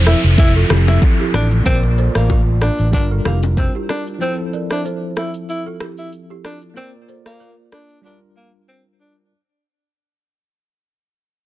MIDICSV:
0, 0, Header, 1, 7, 480
1, 0, Start_track
1, 0, Key_signature, -1, "major"
1, 0, Tempo, 638298
1, 1247, Time_signature, 4, 2, 24, 8
1, 8611, End_track
2, 0, Start_track
2, 0, Title_t, "Balafon"
2, 0, Program_c, 0, 12
2, 422, Note_on_c, 0, 69, 71
2, 428, Note_on_c, 0, 65, 58
2, 482, Note_off_c, 0, 69, 0
2, 486, Note_off_c, 0, 65, 0
2, 531, Note_on_c, 0, 67, 81
2, 536, Note_on_c, 0, 64, 63
2, 604, Note_off_c, 0, 67, 0
2, 608, Note_off_c, 0, 64, 0
2, 902, Note_on_c, 0, 67, 70
2, 908, Note_on_c, 0, 64, 57
2, 962, Note_off_c, 0, 67, 0
2, 966, Note_off_c, 0, 64, 0
2, 1009, Note_on_c, 0, 69, 74
2, 1016, Note_on_c, 0, 65, 59
2, 1083, Note_off_c, 0, 69, 0
2, 1087, Note_off_c, 0, 65, 0
2, 1249, Note_on_c, 0, 70, 82
2, 1256, Note_on_c, 0, 65, 64
2, 1323, Note_off_c, 0, 70, 0
2, 1327, Note_off_c, 0, 65, 0
2, 1490, Note_on_c, 0, 72, 80
2, 1496, Note_on_c, 0, 69, 61
2, 1563, Note_off_c, 0, 72, 0
2, 1568, Note_off_c, 0, 69, 0
2, 1623, Note_on_c, 0, 74, 70
2, 1629, Note_on_c, 0, 70, 56
2, 1682, Note_off_c, 0, 74, 0
2, 1687, Note_off_c, 0, 70, 0
2, 1730, Note_on_c, 0, 70, 88
2, 1736, Note_on_c, 0, 65, 67
2, 1864, Note_off_c, 0, 70, 0
2, 1868, Note_off_c, 0, 65, 0
2, 2341, Note_on_c, 0, 69, 67
2, 2348, Note_on_c, 0, 65, 54
2, 2401, Note_off_c, 0, 69, 0
2, 2406, Note_off_c, 0, 65, 0
2, 2450, Note_on_c, 0, 67, 80
2, 2456, Note_on_c, 0, 64, 61
2, 2523, Note_off_c, 0, 67, 0
2, 2527, Note_off_c, 0, 64, 0
2, 2821, Note_on_c, 0, 67, 76
2, 2827, Note_on_c, 0, 64, 57
2, 2881, Note_off_c, 0, 67, 0
2, 2885, Note_off_c, 0, 64, 0
2, 2930, Note_on_c, 0, 70, 77
2, 2935, Note_on_c, 0, 67, 56
2, 3003, Note_off_c, 0, 70, 0
2, 3007, Note_off_c, 0, 67, 0
2, 3169, Note_on_c, 0, 72, 79
2, 3176, Note_on_c, 0, 69, 60
2, 3243, Note_off_c, 0, 72, 0
2, 3247, Note_off_c, 0, 69, 0
2, 3409, Note_on_c, 0, 74, 79
2, 3415, Note_on_c, 0, 70, 62
2, 3483, Note_off_c, 0, 74, 0
2, 3487, Note_off_c, 0, 70, 0
2, 3540, Note_on_c, 0, 76, 72
2, 3546, Note_on_c, 0, 72, 58
2, 3600, Note_off_c, 0, 76, 0
2, 3605, Note_off_c, 0, 72, 0
2, 3648, Note_on_c, 0, 72, 82
2, 3653, Note_on_c, 0, 69, 68
2, 3782, Note_off_c, 0, 72, 0
2, 3786, Note_off_c, 0, 69, 0
2, 4259, Note_on_c, 0, 69, 72
2, 4266, Note_on_c, 0, 65, 53
2, 4320, Note_off_c, 0, 69, 0
2, 4324, Note_off_c, 0, 65, 0
2, 4368, Note_on_c, 0, 67, 76
2, 4374, Note_on_c, 0, 64, 62
2, 4442, Note_off_c, 0, 67, 0
2, 4446, Note_off_c, 0, 64, 0
2, 4740, Note_on_c, 0, 67, 71
2, 4746, Note_on_c, 0, 64, 54
2, 4800, Note_off_c, 0, 67, 0
2, 4805, Note_off_c, 0, 64, 0
2, 4847, Note_on_c, 0, 69, 73
2, 4853, Note_on_c, 0, 65, 57
2, 4921, Note_off_c, 0, 69, 0
2, 4926, Note_off_c, 0, 65, 0
2, 5088, Note_on_c, 0, 70, 79
2, 5094, Note_on_c, 0, 65, 62
2, 5161, Note_off_c, 0, 70, 0
2, 5166, Note_off_c, 0, 65, 0
2, 5327, Note_on_c, 0, 72, 78
2, 5333, Note_on_c, 0, 69, 62
2, 5401, Note_off_c, 0, 72, 0
2, 5405, Note_off_c, 0, 69, 0
2, 5458, Note_on_c, 0, 74, 71
2, 5465, Note_on_c, 0, 70, 55
2, 5519, Note_off_c, 0, 74, 0
2, 5524, Note_off_c, 0, 70, 0
2, 5567, Note_on_c, 0, 70, 82
2, 5573, Note_on_c, 0, 65, 65
2, 5701, Note_off_c, 0, 70, 0
2, 5706, Note_off_c, 0, 65, 0
2, 8611, End_track
3, 0, Start_track
3, 0, Title_t, "Tine electric piano"
3, 0, Program_c, 1, 4
3, 0, Control_c, 1, 64, 127
3, 0, Note_on_c, 1, 53, 64
3, 0, Note_on_c, 1, 60, 60
3, 0, Note_on_c, 1, 64, 61
3, 0, Note_on_c, 1, 69, 73
3, 493, Note_off_c, 1, 53, 0
3, 500, Note_off_c, 1, 60, 0
3, 506, Note_off_c, 1, 64, 0
3, 512, Note_off_c, 1, 69, 0
3, 518, Note_on_c, 1, 53, 49
3, 524, Note_on_c, 1, 60, 45
3, 530, Note_on_c, 1, 64, 45
3, 536, Note_on_c, 1, 69, 52
3, 1230, Note_on_c, 1, 58, 64
3, 1242, Note_off_c, 1, 53, 0
3, 1242, Note_on_c, 1, 65, 60
3, 1245, Note_off_c, 1, 60, 0
3, 1248, Note_off_c, 1, 64, 0
3, 1251, Note_off_c, 1, 69, 0
3, 1255, Note_on_c, 1, 70, 61
3, 1256, Control_c, 1, 64, 0
3, 1267, Note_on_c, 1, 72, 58
3, 1310, Note_off_c, 1, 72, 0
3, 1316, Note_on_c, 1, 74, 73
3, 1398, Control_c, 1, 64, 127
3, 2179, Note_off_c, 1, 58, 0
3, 2185, Note_off_c, 1, 65, 0
3, 2188, Note_on_c, 1, 55, 64
3, 2191, Note_off_c, 1, 70, 0
3, 2201, Note_on_c, 1, 62, 63
3, 2213, Note_on_c, 1, 65, 59
3, 2217, Control_c, 1, 64, 0
3, 2222, Note_off_c, 1, 74, 0
3, 2227, Note_on_c, 1, 70, 73
3, 2358, Control_c, 1, 64, 127
3, 3138, Note_off_c, 1, 55, 0
3, 3145, Note_off_c, 1, 62, 0
3, 3147, Note_on_c, 1, 53, 67
3, 3151, Note_off_c, 1, 65, 0
3, 3157, Note_off_c, 1, 70, 0
3, 3160, Note_on_c, 1, 60, 60
3, 3172, Note_on_c, 1, 64, 60
3, 3175, Control_c, 1, 64, 0
3, 3184, Note_on_c, 1, 69, 70
3, 3288, Control_c, 1, 64, 127
3, 5047, Note_off_c, 1, 53, 0
3, 5053, Note_off_c, 1, 60, 0
3, 5059, Note_off_c, 1, 64, 0
3, 5065, Note_off_c, 1, 69, 0
3, 5068, Note_on_c, 1, 58, 63
3, 5081, Note_on_c, 1, 65, 59
3, 5093, Note_on_c, 1, 70, 59
3, 5097, Control_c, 1, 64, 0
3, 5105, Note_on_c, 1, 74, 70
3, 5207, Control_c, 1, 64, 127
3, 6018, Note_off_c, 1, 58, 0
3, 6024, Note_off_c, 1, 65, 0
3, 6027, Note_on_c, 1, 55, 63
3, 6031, Note_off_c, 1, 70, 0
3, 6037, Note_off_c, 1, 74, 0
3, 6039, Note_on_c, 1, 62, 57
3, 6051, Note_on_c, 1, 65, 60
3, 6056, Control_c, 1, 64, 0
3, 6064, Note_on_c, 1, 70, 68
3, 6209, Control_c, 1, 64, 127
3, 6977, Note_off_c, 1, 55, 0
3, 6984, Note_off_c, 1, 62, 0
3, 6990, Note_off_c, 1, 65, 0
3, 6996, Note_off_c, 1, 70, 0
3, 7016, Control_c, 1, 64, 0
3, 8611, End_track
4, 0, Start_track
4, 0, Title_t, "Tenor saxophone"
4, 0, Program_c, 2, 66
4, 51, Note_on_c, 2, 64, 75
4, 161, Note_off_c, 2, 64, 0
4, 291, Note_on_c, 2, 64, 86
4, 401, Note_off_c, 2, 64, 0
4, 662, Note_on_c, 2, 64, 72
4, 752, Note_off_c, 2, 64, 0
4, 1011, Note_on_c, 2, 62, 79
4, 1121, Note_off_c, 2, 62, 0
4, 1249, Note_on_c, 2, 60, 103
4, 1360, Note_off_c, 2, 60, 0
4, 1623, Note_on_c, 2, 58, 81
4, 1825, Note_off_c, 2, 58, 0
4, 1970, Note_on_c, 2, 62, 74
4, 2172, Note_off_c, 2, 62, 0
4, 2211, Note_on_c, 2, 62, 77
4, 2321, Note_off_c, 2, 62, 0
4, 2450, Note_on_c, 2, 58, 74
4, 2561, Note_off_c, 2, 58, 0
4, 2690, Note_on_c, 2, 60, 81
4, 2801, Note_off_c, 2, 60, 0
4, 2930, Note_on_c, 2, 62, 80
4, 3041, Note_off_c, 2, 62, 0
4, 3170, Note_on_c, 2, 60, 93
4, 3281, Note_off_c, 2, 60, 0
4, 3542, Note_on_c, 2, 62, 78
4, 3632, Note_off_c, 2, 62, 0
4, 3890, Note_on_c, 2, 64, 74
4, 4001, Note_off_c, 2, 64, 0
4, 4131, Note_on_c, 2, 64, 85
4, 4241, Note_off_c, 2, 64, 0
4, 4502, Note_on_c, 2, 64, 73
4, 4592, Note_off_c, 2, 64, 0
4, 4851, Note_on_c, 2, 62, 78
4, 4961, Note_off_c, 2, 62, 0
4, 5091, Note_on_c, 2, 60, 97
4, 5201, Note_off_c, 2, 60, 0
4, 5461, Note_on_c, 2, 58, 83
4, 5664, Note_off_c, 2, 58, 0
4, 5811, Note_on_c, 2, 62, 78
4, 6013, Note_off_c, 2, 62, 0
4, 6051, Note_on_c, 2, 62, 77
4, 6161, Note_off_c, 2, 62, 0
4, 6290, Note_on_c, 2, 58, 73
4, 6401, Note_off_c, 2, 58, 0
4, 6530, Note_on_c, 2, 60, 83
4, 6641, Note_off_c, 2, 60, 0
4, 6770, Note_on_c, 2, 62, 75
4, 6881, Note_off_c, 2, 62, 0
4, 8611, End_track
5, 0, Start_track
5, 0, Title_t, "Fingered electric bass"
5, 0, Program_c, 3, 33
5, 0, Note_on_c, 3, 28, 92
5, 96, Note_off_c, 3, 28, 0
5, 179, Note_on_c, 3, 29, 89
5, 467, Note_off_c, 3, 29, 0
5, 527, Note_on_c, 3, 29, 83
5, 725, Note_off_c, 3, 29, 0
5, 1006, Note_on_c, 3, 33, 86
5, 1205, Note_off_c, 3, 33, 0
5, 1247, Note_on_c, 3, 34, 100
5, 1555, Note_off_c, 3, 34, 0
5, 1619, Note_on_c, 3, 33, 89
5, 2016, Note_off_c, 3, 33, 0
5, 2100, Note_on_c, 3, 33, 83
5, 2189, Note_off_c, 3, 33, 0
5, 2206, Note_on_c, 3, 31, 105
5, 2405, Note_off_c, 3, 31, 0
5, 2448, Note_on_c, 3, 29, 83
5, 2755, Note_off_c, 3, 29, 0
5, 8611, End_track
6, 0, Start_track
6, 0, Title_t, "Downlifter"
6, 0, Program_c, 4, 103
6, 0, Note_on_c, 4, 60, 84
6, 3167, Note_off_c, 4, 60, 0
6, 8611, End_track
7, 0, Start_track
7, 0, Title_t, "Drums"
7, 45, Note_on_c, 9, 82, 55
7, 50, Note_on_c, 9, 37, 93
7, 121, Note_off_c, 9, 82, 0
7, 125, Note_off_c, 9, 37, 0
7, 177, Note_on_c, 9, 82, 77
7, 252, Note_off_c, 9, 82, 0
7, 283, Note_on_c, 9, 64, 62
7, 287, Note_on_c, 9, 36, 119
7, 294, Note_on_c, 9, 82, 69
7, 358, Note_off_c, 9, 64, 0
7, 362, Note_off_c, 9, 36, 0
7, 369, Note_off_c, 9, 82, 0
7, 527, Note_on_c, 9, 37, 96
7, 527, Note_on_c, 9, 82, 51
7, 528, Note_on_c, 9, 64, 76
7, 602, Note_off_c, 9, 37, 0
7, 602, Note_off_c, 9, 82, 0
7, 603, Note_off_c, 9, 64, 0
7, 655, Note_on_c, 9, 82, 77
7, 662, Note_on_c, 9, 61, 76
7, 731, Note_off_c, 9, 82, 0
7, 737, Note_off_c, 9, 61, 0
7, 766, Note_on_c, 9, 36, 86
7, 766, Note_on_c, 9, 82, 66
7, 774, Note_on_c, 9, 60, 78
7, 841, Note_off_c, 9, 36, 0
7, 841, Note_off_c, 9, 82, 0
7, 849, Note_off_c, 9, 60, 0
7, 1008, Note_on_c, 9, 37, 89
7, 1010, Note_on_c, 9, 60, 47
7, 1010, Note_on_c, 9, 61, 65
7, 1013, Note_on_c, 9, 82, 59
7, 1084, Note_off_c, 9, 37, 0
7, 1085, Note_off_c, 9, 60, 0
7, 1085, Note_off_c, 9, 61, 0
7, 1088, Note_off_c, 9, 82, 0
7, 1135, Note_on_c, 9, 82, 55
7, 1210, Note_off_c, 9, 82, 0
7, 1247, Note_on_c, 9, 36, 112
7, 1248, Note_on_c, 9, 82, 91
7, 1249, Note_on_c, 9, 64, 79
7, 1323, Note_off_c, 9, 36, 0
7, 1323, Note_off_c, 9, 82, 0
7, 1324, Note_off_c, 9, 64, 0
7, 1379, Note_on_c, 9, 60, 49
7, 1454, Note_off_c, 9, 60, 0
7, 1488, Note_on_c, 9, 82, 45
7, 1564, Note_off_c, 9, 82, 0
7, 1618, Note_on_c, 9, 37, 86
7, 1625, Note_on_c, 9, 82, 82
7, 1694, Note_off_c, 9, 37, 0
7, 1700, Note_off_c, 9, 82, 0
7, 1727, Note_on_c, 9, 36, 88
7, 1728, Note_on_c, 9, 60, 83
7, 1730, Note_on_c, 9, 82, 74
7, 1803, Note_off_c, 9, 36, 0
7, 1803, Note_off_c, 9, 60, 0
7, 1805, Note_off_c, 9, 82, 0
7, 1963, Note_on_c, 9, 82, 54
7, 1967, Note_on_c, 9, 37, 93
7, 2038, Note_off_c, 9, 82, 0
7, 2042, Note_off_c, 9, 37, 0
7, 2095, Note_on_c, 9, 82, 75
7, 2170, Note_off_c, 9, 82, 0
7, 2204, Note_on_c, 9, 64, 63
7, 2206, Note_on_c, 9, 36, 115
7, 2213, Note_on_c, 9, 82, 69
7, 2279, Note_off_c, 9, 64, 0
7, 2281, Note_off_c, 9, 36, 0
7, 2288, Note_off_c, 9, 82, 0
7, 2446, Note_on_c, 9, 82, 53
7, 2447, Note_on_c, 9, 37, 92
7, 2448, Note_on_c, 9, 64, 76
7, 2522, Note_off_c, 9, 37, 0
7, 2522, Note_off_c, 9, 82, 0
7, 2523, Note_off_c, 9, 64, 0
7, 2576, Note_on_c, 9, 82, 78
7, 2582, Note_on_c, 9, 61, 76
7, 2651, Note_off_c, 9, 82, 0
7, 2657, Note_off_c, 9, 61, 0
7, 2686, Note_on_c, 9, 36, 83
7, 2686, Note_on_c, 9, 82, 67
7, 2693, Note_on_c, 9, 60, 76
7, 2761, Note_off_c, 9, 36, 0
7, 2761, Note_off_c, 9, 82, 0
7, 2768, Note_off_c, 9, 60, 0
7, 2927, Note_on_c, 9, 37, 94
7, 2929, Note_on_c, 9, 60, 47
7, 2929, Note_on_c, 9, 61, 67
7, 2932, Note_on_c, 9, 82, 57
7, 3003, Note_off_c, 9, 37, 0
7, 3004, Note_off_c, 9, 60, 0
7, 3004, Note_off_c, 9, 61, 0
7, 3007, Note_off_c, 9, 82, 0
7, 3054, Note_on_c, 9, 82, 57
7, 3130, Note_off_c, 9, 82, 0
7, 3168, Note_on_c, 9, 82, 88
7, 3243, Note_off_c, 9, 82, 0
7, 3408, Note_on_c, 9, 82, 44
7, 3484, Note_off_c, 9, 82, 0
7, 3539, Note_on_c, 9, 37, 90
7, 3545, Note_on_c, 9, 82, 80
7, 3614, Note_off_c, 9, 37, 0
7, 3620, Note_off_c, 9, 82, 0
7, 3650, Note_on_c, 9, 82, 69
7, 3725, Note_off_c, 9, 82, 0
7, 3882, Note_on_c, 9, 82, 52
7, 3887, Note_on_c, 9, 37, 91
7, 3957, Note_off_c, 9, 82, 0
7, 3962, Note_off_c, 9, 37, 0
7, 4015, Note_on_c, 9, 82, 73
7, 4090, Note_off_c, 9, 82, 0
7, 4132, Note_on_c, 9, 82, 68
7, 4207, Note_off_c, 9, 82, 0
7, 4365, Note_on_c, 9, 37, 99
7, 4365, Note_on_c, 9, 82, 52
7, 4440, Note_off_c, 9, 37, 0
7, 4440, Note_off_c, 9, 82, 0
7, 4494, Note_on_c, 9, 82, 77
7, 4569, Note_off_c, 9, 82, 0
7, 4605, Note_on_c, 9, 82, 64
7, 4680, Note_off_c, 9, 82, 0
7, 4848, Note_on_c, 9, 37, 91
7, 4852, Note_on_c, 9, 82, 57
7, 4923, Note_off_c, 9, 37, 0
7, 4927, Note_off_c, 9, 82, 0
7, 4973, Note_on_c, 9, 82, 55
7, 5049, Note_off_c, 9, 82, 0
7, 5087, Note_on_c, 9, 82, 82
7, 5163, Note_off_c, 9, 82, 0
7, 5328, Note_on_c, 9, 82, 45
7, 5404, Note_off_c, 9, 82, 0
7, 5459, Note_on_c, 9, 37, 85
7, 5466, Note_on_c, 9, 82, 79
7, 5535, Note_off_c, 9, 37, 0
7, 5541, Note_off_c, 9, 82, 0
7, 5571, Note_on_c, 9, 82, 67
7, 5646, Note_off_c, 9, 82, 0
7, 5804, Note_on_c, 9, 82, 53
7, 5809, Note_on_c, 9, 37, 91
7, 5879, Note_off_c, 9, 82, 0
7, 5884, Note_off_c, 9, 37, 0
7, 5935, Note_on_c, 9, 82, 78
7, 6010, Note_off_c, 9, 82, 0
7, 8611, End_track
0, 0, End_of_file